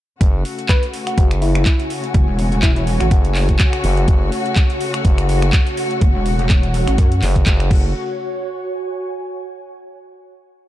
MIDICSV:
0, 0, Header, 1, 7, 480
1, 0, Start_track
1, 0, Key_signature, 3, "minor"
1, 0, Tempo, 483871
1, 207, Time_signature, 4, 2, 24, 8
1, 10597, End_track
2, 0, Start_track
2, 0, Title_t, "Ambient pad"
2, 0, Program_c, 0, 92
2, 207, Note_on_c, 0, 66, 79
2, 671, Note_on_c, 0, 73, 82
2, 682, Note_on_c, 0, 80, 82
2, 4781, Note_on_c, 0, 78, 85
2, 4932, Note_off_c, 0, 80, 0
2, 7635, Note_off_c, 0, 66, 0
2, 7647, Note_off_c, 0, 73, 0
2, 7647, Note_off_c, 0, 78, 0
2, 7647, Note_on_c, 0, 66, 80
2, 7727, Note_on_c, 0, 73, 80
2, 8040, Note_on_c, 0, 80, 82
2, 9527, Note_off_c, 0, 66, 0
2, 9527, Note_off_c, 0, 73, 0
2, 9767, Note_off_c, 0, 80, 0
2, 10597, End_track
3, 0, Start_track
3, 0, Title_t, "Soft synth lead"
3, 0, Program_c, 1, 80
3, 687, Note_on_c, 1, 71, 94
3, 827, Note_off_c, 1, 71, 0
3, 1060, Note_on_c, 1, 66, 85
3, 1128, Note_off_c, 1, 66, 0
3, 1167, Note_on_c, 1, 66, 77
3, 1252, Note_off_c, 1, 66, 0
3, 1407, Note_on_c, 1, 64, 95
3, 1887, Note_off_c, 1, 64, 0
3, 2607, Note_on_c, 1, 64, 89
3, 2692, Note_off_c, 1, 64, 0
3, 2741, Note_on_c, 1, 64, 75
3, 2809, Note_off_c, 1, 64, 0
3, 2982, Note_on_c, 1, 66, 90
3, 3049, Note_off_c, 1, 66, 0
3, 3088, Note_on_c, 1, 66, 76
3, 3173, Note_off_c, 1, 66, 0
3, 10597, End_track
4, 0, Start_track
4, 0, Title_t, "String section"
4, 0, Program_c, 2, 48
4, 206, Note_on_c, 2, 49, 77
4, 206, Note_on_c, 2, 57, 73
4, 206, Note_on_c, 2, 66, 89
4, 7607, Note_off_c, 2, 49, 0
4, 7607, Note_off_c, 2, 57, 0
4, 7607, Note_off_c, 2, 66, 0
4, 7647, Note_on_c, 2, 66, 85
4, 7648, Note_on_c, 2, 49, 73
4, 7648, Note_on_c, 2, 57, 71
4, 7870, Note_off_c, 2, 66, 0
4, 7871, Note_off_c, 2, 49, 0
4, 7871, Note_off_c, 2, 57, 0
4, 10597, End_track
5, 0, Start_track
5, 0, Title_t, "FM bass"
5, 0, Program_c, 3, 39
5, 207, Note_on_c, 3, 30, 97
5, 430, Note_off_c, 3, 30, 0
5, 1167, Note_on_c, 3, 30, 101
5, 1630, Note_off_c, 3, 30, 0
5, 3087, Note_on_c, 3, 30, 98
5, 3550, Note_off_c, 3, 30, 0
5, 3807, Note_on_c, 3, 30, 96
5, 4030, Note_off_c, 3, 30, 0
5, 4047, Note_on_c, 3, 30, 98
5, 4270, Note_off_c, 3, 30, 0
5, 5007, Note_on_c, 3, 30, 101
5, 5470, Note_off_c, 3, 30, 0
5, 7167, Note_on_c, 3, 30, 99
5, 7390, Note_off_c, 3, 30, 0
5, 7407, Note_on_c, 3, 30, 99
5, 7641, Note_off_c, 3, 30, 0
5, 7647, Note_on_c, 3, 30, 98
5, 7870, Note_off_c, 3, 30, 0
5, 10597, End_track
6, 0, Start_track
6, 0, Title_t, "Wobble bass"
6, 0, Program_c, 4, 39
6, 2127, Note_on_c, 4, 30, 97
6, 2239, Note_off_c, 4, 30, 0
6, 2260, Note_on_c, 4, 28, 94
6, 2590, Note_off_c, 4, 28, 0
6, 2607, Note_on_c, 4, 28, 98
6, 2959, Note_off_c, 4, 28, 0
6, 2980, Note_on_c, 4, 33, 98
6, 3070, Note_off_c, 4, 33, 0
6, 5967, Note_on_c, 4, 30, 97
6, 6079, Note_off_c, 4, 30, 0
6, 6100, Note_on_c, 4, 28, 98
6, 6430, Note_off_c, 4, 28, 0
6, 6447, Note_on_c, 4, 28, 102
6, 6799, Note_off_c, 4, 28, 0
6, 6820, Note_on_c, 4, 33, 103
6, 6910, Note_off_c, 4, 33, 0
6, 6927, Note_on_c, 4, 42, 98
6, 7150, Note_off_c, 4, 42, 0
6, 10597, End_track
7, 0, Start_track
7, 0, Title_t, "Drums"
7, 207, Note_on_c, 9, 36, 121
7, 207, Note_on_c, 9, 42, 82
7, 306, Note_off_c, 9, 36, 0
7, 306, Note_off_c, 9, 42, 0
7, 447, Note_on_c, 9, 46, 100
7, 546, Note_off_c, 9, 46, 0
7, 581, Note_on_c, 9, 42, 38
7, 680, Note_off_c, 9, 42, 0
7, 683, Note_on_c, 9, 39, 122
7, 687, Note_on_c, 9, 36, 119
7, 687, Note_on_c, 9, 42, 83
7, 782, Note_off_c, 9, 39, 0
7, 786, Note_off_c, 9, 36, 0
7, 787, Note_off_c, 9, 42, 0
7, 821, Note_on_c, 9, 42, 39
7, 920, Note_off_c, 9, 42, 0
7, 927, Note_on_c, 9, 46, 94
7, 1027, Note_off_c, 9, 46, 0
7, 1061, Note_on_c, 9, 26, 60
7, 1061, Note_on_c, 9, 42, 55
7, 1160, Note_off_c, 9, 26, 0
7, 1160, Note_off_c, 9, 42, 0
7, 1167, Note_on_c, 9, 36, 121
7, 1167, Note_on_c, 9, 42, 83
7, 1266, Note_off_c, 9, 36, 0
7, 1266, Note_off_c, 9, 42, 0
7, 1300, Note_on_c, 9, 26, 60
7, 1300, Note_on_c, 9, 42, 53
7, 1400, Note_off_c, 9, 26, 0
7, 1400, Note_off_c, 9, 42, 0
7, 1407, Note_on_c, 9, 46, 102
7, 1506, Note_off_c, 9, 46, 0
7, 1541, Note_on_c, 9, 26, 79
7, 1541, Note_on_c, 9, 42, 38
7, 1640, Note_off_c, 9, 26, 0
7, 1640, Note_off_c, 9, 42, 0
7, 1643, Note_on_c, 9, 39, 127
7, 1647, Note_on_c, 9, 36, 116
7, 1647, Note_on_c, 9, 42, 85
7, 1742, Note_off_c, 9, 39, 0
7, 1746, Note_off_c, 9, 36, 0
7, 1746, Note_off_c, 9, 42, 0
7, 1781, Note_on_c, 9, 42, 41
7, 1880, Note_off_c, 9, 42, 0
7, 1887, Note_on_c, 9, 46, 93
7, 1986, Note_off_c, 9, 46, 0
7, 2021, Note_on_c, 9, 42, 38
7, 2120, Note_off_c, 9, 42, 0
7, 2127, Note_on_c, 9, 36, 127
7, 2127, Note_on_c, 9, 42, 79
7, 2226, Note_off_c, 9, 36, 0
7, 2227, Note_off_c, 9, 42, 0
7, 2367, Note_on_c, 9, 46, 106
7, 2467, Note_off_c, 9, 46, 0
7, 2501, Note_on_c, 9, 42, 39
7, 2600, Note_off_c, 9, 42, 0
7, 2603, Note_on_c, 9, 39, 127
7, 2607, Note_on_c, 9, 36, 125
7, 2607, Note_on_c, 9, 42, 77
7, 2702, Note_off_c, 9, 39, 0
7, 2706, Note_off_c, 9, 36, 0
7, 2706, Note_off_c, 9, 42, 0
7, 2741, Note_on_c, 9, 42, 39
7, 2840, Note_off_c, 9, 42, 0
7, 2847, Note_on_c, 9, 46, 98
7, 2946, Note_off_c, 9, 46, 0
7, 2981, Note_on_c, 9, 26, 58
7, 2981, Note_on_c, 9, 42, 53
7, 3080, Note_off_c, 9, 26, 0
7, 3080, Note_off_c, 9, 42, 0
7, 3087, Note_on_c, 9, 36, 121
7, 3087, Note_on_c, 9, 42, 83
7, 3186, Note_off_c, 9, 36, 0
7, 3186, Note_off_c, 9, 42, 0
7, 3220, Note_on_c, 9, 42, 52
7, 3319, Note_off_c, 9, 42, 0
7, 3323, Note_on_c, 9, 39, 61
7, 3327, Note_on_c, 9, 46, 101
7, 3422, Note_off_c, 9, 39, 0
7, 3426, Note_off_c, 9, 46, 0
7, 3460, Note_on_c, 9, 36, 59
7, 3460, Note_on_c, 9, 42, 39
7, 3559, Note_off_c, 9, 36, 0
7, 3560, Note_off_c, 9, 42, 0
7, 3563, Note_on_c, 9, 39, 127
7, 3567, Note_on_c, 9, 36, 118
7, 3567, Note_on_c, 9, 42, 83
7, 3662, Note_off_c, 9, 39, 0
7, 3666, Note_off_c, 9, 36, 0
7, 3666, Note_off_c, 9, 42, 0
7, 3700, Note_on_c, 9, 26, 58
7, 3700, Note_on_c, 9, 42, 38
7, 3799, Note_off_c, 9, 26, 0
7, 3799, Note_off_c, 9, 42, 0
7, 3807, Note_on_c, 9, 46, 99
7, 3906, Note_off_c, 9, 46, 0
7, 3941, Note_on_c, 9, 42, 37
7, 4040, Note_off_c, 9, 42, 0
7, 4047, Note_on_c, 9, 36, 127
7, 4047, Note_on_c, 9, 42, 77
7, 4146, Note_off_c, 9, 36, 0
7, 4146, Note_off_c, 9, 42, 0
7, 4287, Note_on_c, 9, 46, 106
7, 4387, Note_off_c, 9, 46, 0
7, 4421, Note_on_c, 9, 42, 37
7, 4520, Note_off_c, 9, 42, 0
7, 4523, Note_on_c, 9, 39, 124
7, 4527, Note_on_c, 9, 36, 127
7, 4527, Note_on_c, 9, 42, 77
7, 4622, Note_off_c, 9, 39, 0
7, 4626, Note_off_c, 9, 36, 0
7, 4626, Note_off_c, 9, 42, 0
7, 4661, Note_on_c, 9, 42, 38
7, 4760, Note_off_c, 9, 42, 0
7, 4767, Note_on_c, 9, 46, 94
7, 4866, Note_off_c, 9, 46, 0
7, 4900, Note_on_c, 9, 26, 63
7, 4900, Note_on_c, 9, 42, 52
7, 5000, Note_off_c, 9, 26, 0
7, 5000, Note_off_c, 9, 42, 0
7, 5007, Note_on_c, 9, 36, 122
7, 5007, Note_on_c, 9, 42, 78
7, 5106, Note_off_c, 9, 36, 0
7, 5106, Note_off_c, 9, 42, 0
7, 5141, Note_on_c, 9, 26, 59
7, 5141, Note_on_c, 9, 42, 51
7, 5240, Note_off_c, 9, 26, 0
7, 5240, Note_off_c, 9, 42, 0
7, 5247, Note_on_c, 9, 46, 103
7, 5346, Note_off_c, 9, 46, 0
7, 5380, Note_on_c, 9, 26, 78
7, 5380, Note_on_c, 9, 42, 36
7, 5479, Note_off_c, 9, 26, 0
7, 5479, Note_off_c, 9, 42, 0
7, 5483, Note_on_c, 9, 39, 126
7, 5487, Note_on_c, 9, 36, 121
7, 5487, Note_on_c, 9, 42, 81
7, 5582, Note_off_c, 9, 39, 0
7, 5586, Note_off_c, 9, 36, 0
7, 5586, Note_off_c, 9, 42, 0
7, 5620, Note_on_c, 9, 42, 36
7, 5719, Note_off_c, 9, 42, 0
7, 5727, Note_on_c, 9, 46, 99
7, 5826, Note_off_c, 9, 46, 0
7, 5860, Note_on_c, 9, 42, 34
7, 5960, Note_off_c, 9, 42, 0
7, 5967, Note_on_c, 9, 36, 127
7, 5967, Note_on_c, 9, 42, 74
7, 6066, Note_off_c, 9, 36, 0
7, 6066, Note_off_c, 9, 42, 0
7, 6207, Note_on_c, 9, 46, 105
7, 6306, Note_off_c, 9, 46, 0
7, 6341, Note_on_c, 9, 42, 36
7, 6440, Note_off_c, 9, 42, 0
7, 6443, Note_on_c, 9, 39, 121
7, 6447, Note_on_c, 9, 36, 127
7, 6447, Note_on_c, 9, 42, 76
7, 6542, Note_off_c, 9, 39, 0
7, 6546, Note_off_c, 9, 36, 0
7, 6546, Note_off_c, 9, 42, 0
7, 6580, Note_on_c, 9, 42, 37
7, 6679, Note_off_c, 9, 42, 0
7, 6687, Note_on_c, 9, 46, 97
7, 6786, Note_off_c, 9, 46, 0
7, 6820, Note_on_c, 9, 26, 61
7, 6820, Note_on_c, 9, 42, 51
7, 6919, Note_off_c, 9, 26, 0
7, 6919, Note_off_c, 9, 42, 0
7, 6927, Note_on_c, 9, 36, 126
7, 6927, Note_on_c, 9, 42, 79
7, 7026, Note_off_c, 9, 36, 0
7, 7026, Note_off_c, 9, 42, 0
7, 7060, Note_on_c, 9, 42, 51
7, 7159, Note_off_c, 9, 42, 0
7, 7163, Note_on_c, 9, 39, 59
7, 7167, Note_on_c, 9, 46, 109
7, 7262, Note_off_c, 9, 39, 0
7, 7266, Note_off_c, 9, 46, 0
7, 7300, Note_on_c, 9, 36, 60
7, 7301, Note_on_c, 9, 42, 37
7, 7399, Note_off_c, 9, 36, 0
7, 7400, Note_off_c, 9, 42, 0
7, 7404, Note_on_c, 9, 39, 118
7, 7407, Note_on_c, 9, 36, 123
7, 7408, Note_on_c, 9, 42, 78
7, 7503, Note_off_c, 9, 39, 0
7, 7506, Note_off_c, 9, 36, 0
7, 7507, Note_off_c, 9, 42, 0
7, 7541, Note_on_c, 9, 26, 66
7, 7541, Note_on_c, 9, 42, 37
7, 7640, Note_off_c, 9, 26, 0
7, 7640, Note_off_c, 9, 42, 0
7, 7647, Note_on_c, 9, 36, 114
7, 7648, Note_on_c, 9, 49, 86
7, 7746, Note_off_c, 9, 36, 0
7, 7747, Note_off_c, 9, 49, 0
7, 10597, End_track
0, 0, End_of_file